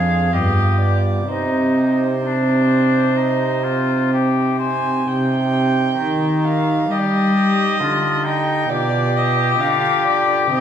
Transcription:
Already playing: pipe organ F2 C4 D4 G#4, cello F2, oboe G#4, violin F5
0.29 pipe organ G2 B3 F4 G4, oboe G4
0.33 cello G2, violin D#5
0.80 violin D5
1.23 pipe organ C4 D#4 G4, oboe D#4
1.28 cello C3, pipe organ C3, violin C5
2.23 oboe D4
3.16 oboe D#4
3.63 oboe F4
4.13 oboe G4
4.58 oboe C5, violin G#5
5.05 cello C3, pipe organ C3 D#4 G4, violin G5
5.99 cello D#3, pipe organ D#3
6.45 violin F5
6.90 cello G3, pipe organ G3, oboe G4, violin D#5
6.98 violin D5
7.05 violin D#5
7.80 pipe organ D3, cello D3, oboe F4
8.25 oboe D#4, violin G5
8.67 cello B2, pipe organ B2 F4 G4, oboe G4, violin D5
9.17 violin D#5
9.60 cello D3, pipe organ D3, violin F5
10.06 violin D5
10.48 cello C3, pipe organ C3 D#4 C5, violin D#5

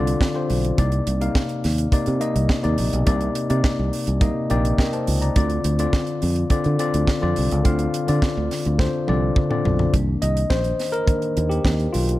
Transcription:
Already playing: fingered electric bass C2, tine electric piano D3 C4 F4 G4 D5
0.07 closed hi-hat
0.21 kick, snare
0.34 tine electric piano D3 C4 F4 C5
0.50 fingered electric bass B1, open hi-hat
0.65 closed hi-hat
0.77 fingered electric bass C2, tine electric piano C3 A#3 D#4 D5, kick, closed hi-hat
0.92 closed hi-hat
1.07 fingered electric bass C2, closed hi-hat
1.20 tine electric piano C3 A#3 D#4 F5, closed hi-hat
1.35 kick, snare
1.49 closed hi-hat
1.64 fingered electric bass D#2, snare, open hi-hat
1.78 closed hi-hat
1.92 tine electric piano C3 A#3 D#4 D5, muted fingered electric bass stroke, kick, closed hi-hat
2.06 fingered electric bass C3, closed hi-hat
2.20 tine electric piano C3 A#3 D#4 D#5, closed hi-hat
2.36 fingered electric bass C2, closed hi-hat
2.49 kick, snare
2.63 fingered electric bass D#2, tine electric piano C3 A#3 D#4 D5, closed hi-hat
2.78 fingered electric bass A#1, open hi-hat
2.93 fingered electric bass B1, closed hi-hat
3.05 fingered electric bass C2, tine electric piano C3 A#3 D#4 D5, kick, closed hi-hat
3.21 closed hi-hat
3.35 closed hi-hat
3.49 tine electric piano C3 A#3 D#4 D5, fingered electric bass C3, closed hi-hat
3.64 kick, snare
3.79 fingered electric bass C2
3.93 open hi-hat
4.07 fingered electric bass C2, closed hi-hat
4.20 tine electric piano C3 A#3 D#4 D#5, kick, closed hi-hat
4.50 fingered electric bass A#1, tine electric piano C3 A#3 D#4 D5 G5, closed hi-hat
4.65 closed hi-hat
4.78 tine electric piano A#4 D#5 G5, kick, snare
4.93 tine electric piano C5 A5, closed hi-hat
5.07 fingered electric bass C#2, open hi-hat
5.22 tine electric piano D5 A#5, closed hi-hat
5.36 fingered electric bass D2, tine electric piano D3 C4 F4 D5, kick, closed hi-hat
5.50 closed hi-hat
5.64 fingered electric bass D2, closed hi-hat
5.79 tine electric piano D3 C4 F4 D5, closed hi-hat
5.93 kick, snare
6.07 closed hi-hat
6.22 fingered electric bass F2, open hi-hat
6.36 closed hi-hat
6.50 tine electric piano D3 C4 F4 D5, muted fingered electric bass stroke, kick, closed hi-hat
6.64 fingered electric bass D3, closed hi-hat
6.79 tine electric piano D3 C4 F4 D5, closed hi-hat
6.94 fingered electric bass D2, closed hi-hat
7.07 kick, snare
7.21 fingered electric bass F2, tine electric piano D3 C4 F4 D5
7.36 fingered electric bass C2, open hi-hat
7.51 fingered electric bass C#2, closed hi-hat
7.64 fingered electric bass D2, tine electric piano D3 C4 F4 F5, kick, closed hi-hat
7.79 closed hi-hat
7.94 closed hi-hat
8.07 tine electric piano D3 C4 F4 D5, fingered electric bass D3, closed hi-hat
8.22 kick, snare
8.37 fingered electric bass D2
8.51 snare, open hi-hat
8.65 fingered electric bass D2, closed hi-hat
8.78 tine electric piano D3 C4 F4 C5, kick, snare
9.07 fingered electric bass C2, tine electric piano D3 C4 F4 D5, high tom
9.36 kick, mid tom
9.50 tine electric piano D3 C4 F4 D5, mid tom
9.65 fingered electric bass B1, floor tom
9.79 floor tom
9.93 fingered electric bass C2, tine electric piano D#3 A#3 D4, kick, closed hi-hat
10.22 fingered electric bass C2, tine electric piano D#5, closed hi-hat
10.37 closed hi-hat
10.50 fingered electric bass A#1, tine electric piano C5, kick, snare
10.64 closed hi-hat
10.79 snare, open hi-hat
10.92 tine electric piano A#4, closed hi-hat
11.06 tine electric piano D#3 A#3 D4, kick, closed hi-hat
11.22 closed hi-hat
11.37 fingered electric bass D#2, closed hi-hat
11.49 tine electric piano G4, closed hi-hat
11.65 fingered electric bass D#2, kick, snare
11.80 closed hi-hat
11.93 fingered electric bass B1, tine electric piano F4, open hi-hat
12.09 closed hi-hat

